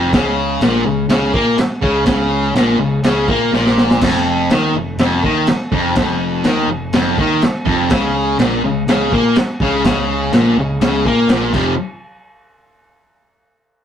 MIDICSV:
0, 0, Header, 1, 6, 480
1, 0, Start_track
1, 0, Tempo, 485044
1, 121, Time_signature, 4, 2, 24, 8
1, 13701, End_track
2, 0, Start_track
2, 0, Title_t, "Distorted electric guitar"
2, 0, Program_c, 0, 30
2, 0, Note_on_c, 0, 41, 117
2, 120, Note_off_c, 0, 41, 0
2, 139, Note_on_c, 0, 49, 122
2, 605, Note_off_c, 0, 49, 0
2, 617, Note_on_c, 0, 46, 105
2, 844, Note_off_c, 0, 46, 0
2, 855, Note_on_c, 0, 49, 74
2, 1042, Note_off_c, 0, 49, 0
2, 1086, Note_on_c, 0, 49, 113
2, 1319, Note_off_c, 0, 49, 0
2, 1327, Note_on_c, 0, 58, 108
2, 1560, Note_off_c, 0, 58, 0
2, 1802, Note_on_c, 0, 49, 106
2, 2029, Note_off_c, 0, 49, 0
2, 2041, Note_on_c, 0, 49, 115
2, 2520, Note_off_c, 0, 49, 0
2, 2528, Note_on_c, 0, 46, 100
2, 2763, Note_off_c, 0, 46, 0
2, 2771, Note_on_c, 0, 49, 77
2, 2964, Note_off_c, 0, 49, 0
2, 3015, Note_on_c, 0, 49, 101
2, 3248, Note_off_c, 0, 49, 0
2, 3254, Note_on_c, 0, 58, 97
2, 3488, Note_off_c, 0, 58, 0
2, 3503, Note_on_c, 0, 46, 109
2, 3973, Note_off_c, 0, 46, 0
2, 3978, Note_on_c, 0, 41, 112
2, 4452, Note_off_c, 0, 41, 0
2, 4472, Note_on_c, 0, 51, 100
2, 4698, Note_off_c, 0, 51, 0
2, 4708, Note_on_c, 0, 41, 73
2, 4896, Note_off_c, 0, 41, 0
2, 4951, Note_on_c, 0, 41, 108
2, 5179, Note_off_c, 0, 41, 0
2, 5186, Note_on_c, 0, 51, 103
2, 5416, Note_off_c, 0, 51, 0
2, 5659, Note_on_c, 0, 41, 109
2, 5894, Note_off_c, 0, 41, 0
2, 5907, Note_on_c, 0, 41, 119
2, 6374, Note_on_c, 0, 51, 102
2, 6378, Note_off_c, 0, 41, 0
2, 6612, Note_off_c, 0, 51, 0
2, 6628, Note_on_c, 0, 41, 79
2, 6818, Note_off_c, 0, 41, 0
2, 6861, Note_on_c, 0, 41, 110
2, 7095, Note_off_c, 0, 41, 0
2, 7111, Note_on_c, 0, 51, 102
2, 7340, Note_off_c, 0, 51, 0
2, 7573, Note_on_c, 0, 41, 112
2, 7811, Note_off_c, 0, 41, 0
2, 7814, Note_on_c, 0, 49, 115
2, 8292, Note_off_c, 0, 49, 0
2, 8302, Note_on_c, 0, 46, 109
2, 8535, Note_off_c, 0, 46, 0
2, 8550, Note_on_c, 0, 49, 76
2, 8738, Note_off_c, 0, 49, 0
2, 8794, Note_on_c, 0, 49, 114
2, 9021, Note_off_c, 0, 49, 0
2, 9035, Note_on_c, 0, 58, 111
2, 9261, Note_off_c, 0, 58, 0
2, 9514, Note_on_c, 0, 49, 103
2, 9737, Note_off_c, 0, 49, 0
2, 9749, Note_on_c, 0, 49, 123
2, 10216, Note_off_c, 0, 49, 0
2, 10227, Note_on_c, 0, 46, 105
2, 10455, Note_off_c, 0, 46, 0
2, 10476, Note_on_c, 0, 49, 77
2, 10658, Note_off_c, 0, 49, 0
2, 10699, Note_on_c, 0, 49, 111
2, 10930, Note_off_c, 0, 49, 0
2, 10944, Note_on_c, 0, 58, 101
2, 11172, Note_off_c, 0, 58, 0
2, 11172, Note_on_c, 0, 46, 110
2, 11411, Note_on_c, 0, 41, 97
2, 11412, Note_off_c, 0, 46, 0
2, 11416, Note_on_c, 0, 48, 97
2, 11426, Note_on_c, 0, 53, 118
2, 11604, Note_off_c, 0, 41, 0
2, 11606, Note_off_c, 0, 48, 0
2, 11611, Note_off_c, 0, 53, 0
2, 13701, End_track
3, 0, Start_track
3, 0, Title_t, "Picked electric bass"
3, 0, Program_c, 1, 34
3, 0, Note_on_c, 1, 29, 104
3, 105, Note_off_c, 1, 29, 0
3, 124, Note_on_c, 1, 37, 95
3, 571, Note_off_c, 1, 37, 0
3, 591, Note_on_c, 1, 34, 104
3, 821, Note_off_c, 1, 34, 0
3, 840, Note_on_c, 1, 37, 88
3, 1066, Note_off_c, 1, 37, 0
3, 1073, Note_on_c, 1, 37, 98
3, 1302, Note_off_c, 1, 37, 0
3, 1321, Note_on_c, 1, 46, 97
3, 1547, Note_off_c, 1, 46, 0
3, 1801, Note_on_c, 1, 37, 91
3, 2028, Note_off_c, 1, 37, 0
3, 2039, Note_on_c, 1, 37, 94
3, 2492, Note_off_c, 1, 37, 0
3, 2515, Note_on_c, 1, 34, 98
3, 2747, Note_off_c, 1, 34, 0
3, 2757, Note_on_c, 1, 37, 86
3, 2988, Note_off_c, 1, 37, 0
3, 2994, Note_on_c, 1, 37, 93
3, 3227, Note_off_c, 1, 37, 0
3, 3244, Note_on_c, 1, 46, 99
3, 3472, Note_off_c, 1, 46, 0
3, 3480, Note_on_c, 1, 34, 98
3, 3935, Note_off_c, 1, 34, 0
3, 3973, Note_on_c, 1, 29, 95
3, 4422, Note_off_c, 1, 29, 0
3, 4448, Note_on_c, 1, 39, 99
3, 4676, Note_off_c, 1, 39, 0
3, 4687, Note_on_c, 1, 29, 82
3, 4916, Note_off_c, 1, 29, 0
3, 4928, Note_on_c, 1, 29, 98
3, 5157, Note_off_c, 1, 29, 0
3, 5180, Note_on_c, 1, 39, 104
3, 5402, Note_off_c, 1, 39, 0
3, 5657, Note_on_c, 1, 29, 97
3, 5883, Note_off_c, 1, 29, 0
3, 5899, Note_on_c, 1, 29, 94
3, 6348, Note_off_c, 1, 29, 0
3, 6371, Note_on_c, 1, 39, 102
3, 6600, Note_off_c, 1, 39, 0
3, 6605, Note_on_c, 1, 29, 83
3, 6837, Note_off_c, 1, 29, 0
3, 6851, Note_on_c, 1, 29, 102
3, 7080, Note_off_c, 1, 29, 0
3, 7100, Note_on_c, 1, 39, 99
3, 7322, Note_off_c, 1, 39, 0
3, 7582, Note_on_c, 1, 29, 94
3, 7806, Note_off_c, 1, 29, 0
3, 7819, Note_on_c, 1, 37, 96
3, 8268, Note_off_c, 1, 37, 0
3, 8290, Note_on_c, 1, 34, 99
3, 8519, Note_off_c, 1, 34, 0
3, 8545, Note_on_c, 1, 37, 93
3, 8767, Note_off_c, 1, 37, 0
3, 8779, Note_on_c, 1, 37, 99
3, 9004, Note_off_c, 1, 37, 0
3, 9023, Note_on_c, 1, 46, 109
3, 9245, Note_off_c, 1, 46, 0
3, 9500, Note_on_c, 1, 37, 95
3, 9724, Note_off_c, 1, 37, 0
3, 9743, Note_on_c, 1, 37, 95
3, 10187, Note_off_c, 1, 37, 0
3, 10219, Note_on_c, 1, 34, 93
3, 10442, Note_off_c, 1, 34, 0
3, 10456, Note_on_c, 1, 37, 85
3, 10679, Note_off_c, 1, 37, 0
3, 10684, Note_on_c, 1, 37, 98
3, 10912, Note_off_c, 1, 37, 0
3, 10940, Note_on_c, 1, 46, 89
3, 11153, Note_off_c, 1, 46, 0
3, 11159, Note_on_c, 1, 34, 94
3, 11389, Note_off_c, 1, 34, 0
3, 11411, Note_on_c, 1, 29, 87
3, 11634, Note_off_c, 1, 29, 0
3, 13701, End_track
4, 0, Start_track
4, 0, Title_t, "Muted distorted electric guitar strokes"
4, 1558, Note_on_c, 9, 29, 63
4, 1657, Note_off_c, 9, 29, 0
4, 5430, Note_on_c, 9, 29, 66
4, 5529, Note_off_c, 9, 29, 0
4, 7350, Note_on_c, 9, 29, 63
4, 7449, Note_off_c, 9, 29, 0
4, 9280, Note_on_c, 9, 29, 65
4, 9379, Note_off_c, 9, 29, 0
4, 13701, End_track
5, 0, Start_track
5, 0, Title_t, "Muted picked electric bass strokes"
5, 1555, Note_on_c, 9, 29, 44
5, 1654, Note_off_c, 9, 29, 0
5, 5407, Note_on_c, 9, 29, 40
5, 5506, Note_off_c, 9, 29, 0
5, 7328, Note_on_c, 9, 29, 46
5, 7427, Note_off_c, 9, 29, 0
5, 9261, Note_on_c, 9, 29, 45
5, 9360, Note_off_c, 9, 29, 0
5, 13701, End_track
6, 0, Start_track
6, 0, Title_t, "Drums"
6, 125, Note_on_c, 9, 36, 110
6, 129, Note_on_c, 9, 49, 65
6, 139, Note_on_c, 9, 38, 117
6, 224, Note_off_c, 9, 36, 0
6, 228, Note_off_c, 9, 49, 0
6, 238, Note_off_c, 9, 38, 0
6, 605, Note_on_c, 9, 49, 63
6, 615, Note_on_c, 9, 38, 110
6, 704, Note_off_c, 9, 49, 0
6, 714, Note_off_c, 9, 38, 0
6, 1082, Note_on_c, 9, 49, 64
6, 1092, Note_on_c, 9, 38, 116
6, 1181, Note_off_c, 9, 49, 0
6, 1191, Note_off_c, 9, 38, 0
6, 1324, Note_on_c, 9, 36, 112
6, 1423, Note_off_c, 9, 36, 0
6, 1563, Note_on_c, 9, 49, 68
6, 1573, Note_on_c, 9, 38, 114
6, 1662, Note_off_c, 9, 49, 0
6, 1672, Note_off_c, 9, 38, 0
6, 1805, Note_on_c, 9, 36, 104
6, 1904, Note_off_c, 9, 36, 0
6, 2036, Note_on_c, 9, 49, 69
6, 2044, Note_on_c, 9, 36, 114
6, 2046, Note_on_c, 9, 38, 117
6, 2135, Note_off_c, 9, 49, 0
6, 2143, Note_off_c, 9, 36, 0
6, 2145, Note_off_c, 9, 38, 0
6, 2530, Note_on_c, 9, 49, 65
6, 2539, Note_on_c, 9, 38, 114
6, 2628, Note_off_c, 9, 49, 0
6, 2638, Note_off_c, 9, 38, 0
6, 3004, Note_on_c, 9, 49, 70
6, 3013, Note_on_c, 9, 38, 121
6, 3102, Note_off_c, 9, 49, 0
6, 3112, Note_off_c, 9, 38, 0
6, 3248, Note_on_c, 9, 36, 111
6, 3347, Note_off_c, 9, 36, 0
6, 3495, Note_on_c, 9, 38, 67
6, 3594, Note_off_c, 9, 38, 0
6, 3623, Note_on_c, 9, 38, 72
6, 3722, Note_off_c, 9, 38, 0
6, 3737, Note_on_c, 9, 38, 93
6, 3836, Note_off_c, 9, 38, 0
6, 3864, Note_on_c, 9, 38, 104
6, 3963, Note_off_c, 9, 38, 0
6, 3971, Note_on_c, 9, 49, 69
6, 3971, Note_on_c, 9, 57, 122
6, 3973, Note_on_c, 9, 36, 112
6, 3981, Note_on_c, 9, 38, 123
6, 4070, Note_off_c, 9, 49, 0
6, 4070, Note_off_c, 9, 57, 0
6, 4072, Note_off_c, 9, 36, 0
6, 4080, Note_off_c, 9, 38, 0
6, 4454, Note_on_c, 9, 49, 61
6, 4464, Note_on_c, 9, 38, 110
6, 4553, Note_off_c, 9, 49, 0
6, 4563, Note_off_c, 9, 38, 0
6, 4933, Note_on_c, 9, 49, 69
6, 4943, Note_on_c, 9, 38, 119
6, 5032, Note_off_c, 9, 49, 0
6, 5042, Note_off_c, 9, 38, 0
6, 5178, Note_on_c, 9, 36, 113
6, 5277, Note_off_c, 9, 36, 0
6, 5411, Note_on_c, 9, 49, 69
6, 5421, Note_on_c, 9, 38, 111
6, 5510, Note_off_c, 9, 49, 0
6, 5519, Note_off_c, 9, 38, 0
6, 5659, Note_on_c, 9, 36, 99
6, 5758, Note_off_c, 9, 36, 0
6, 5893, Note_on_c, 9, 49, 74
6, 5900, Note_on_c, 9, 36, 118
6, 5903, Note_on_c, 9, 38, 114
6, 5992, Note_off_c, 9, 49, 0
6, 5999, Note_off_c, 9, 36, 0
6, 6002, Note_off_c, 9, 38, 0
6, 6372, Note_on_c, 9, 49, 65
6, 6382, Note_on_c, 9, 38, 108
6, 6471, Note_off_c, 9, 49, 0
6, 6481, Note_off_c, 9, 38, 0
6, 6855, Note_on_c, 9, 49, 72
6, 6865, Note_on_c, 9, 38, 126
6, 6954, Note_off_c, 9, 49, 0
6, 6964, Note_off_c, 9, 38, 0
6, 7103, Note_on_c, 9, 36, 102
6, 7202, Note_off_c, 9, 36, 0
6, 7340, Note_on_c, 9, 49, 64
6, 7350, Note_on_c, 9, 38, 107
6, 7439, Note_off_c, 9, 49, 0
6, 7449, Note_off_c, 9, 38, 0
6, 7584, Note_on_c, 9, 36, 108
6, 7683, Note_off_c, 9, 36, 0
6, 7817, Note_on_c, 9, 49, 65
6, 7824, Note_on_c, 9, 36, 121
6, 7827, Note_on_c, 9, 38, 126
6, 7916, Note_off_c, 9, 49, 0
6, 7923, Note_off_c, 9, 36, 0
6, 7926, Note_off_c, 9, 38, 0
6, 8300, Note_on_c, 9, 49, 60
6, 8310, Note_on_c, 9, 38, 113
6, 8399, Note_off_c, 9, 49, 0
6, 8409, Note_off_c, 9, 38, 0
6, 8786, Note_on_c, 9, 49, 66
6, 8796, Note_on_c, 9, 38, 124
6, 8885, Note_off_c, 9, 49, 0
6, 8895, Note_off_c, 9, 38, 0
6, 9023, Note_on_c, 9, 36, 108
6, 9122, Note_off_c, 9, 36, 0
6, 9258, Note_on_c, 9, 49, 69
6, 9268, Note_on_c, 9, 38, 116
6, 9357, Note_off_c, 9, 49, 0
6, 9367, Note_off_c, 9, 38, 0
6, 9502, Note_on_c, 9, 36, 115
6, 9601, Note_off_c, 9, 36, 0
6, 9742, Note_on_c, 9, 36, 108
6, 9743, Note_on_c, 9, 49, 69
6, 9752, Note_on_c, 9, 38, 117
6, 9841, Note_off_c, 9, 36, 0
6, 9841, Note_off_c, 9, 49, 0
6, 9851, Note_off_c, 9, 38, 0
6, 10219, Note_on_c, 9, 49, 68
6, 10229, Note_on_c, 9, 38, 108
6, 10318, Note_off_c, 9, 49, 0
6, 10327, Note_off_c, 9, 38, 0
6, 10699, Note_on_c, 9, 49, 72
6, 10709, Note_on_c, 9, 38, 118
6, 10798, Note_off_c, 9, 49, 0
6, 10808, Note_off_c, 9, 38, 0
6, 10937, Note_on_c, 9, 36, 101
6, 11036, Note_off_c, 9, 36, 0
6, 11172, Note_on_c, 9, 49, 62
6, 11182, Note_on_c, 9, 38, 111
6, 11271, Note_off_c, 9, 49, 0
6, 11280, Note_off_c, 9, 38, 0
6, 11414, Note_on_c, 9, 36, 105
6, 11416, Note_on_c, 9, 57, 91
6, 11513, Note_off_c, 9, 36, 0
6, 11515, Note_off_c, 9, 57, 0
6, 13701, End_track
0, 0, End_of_file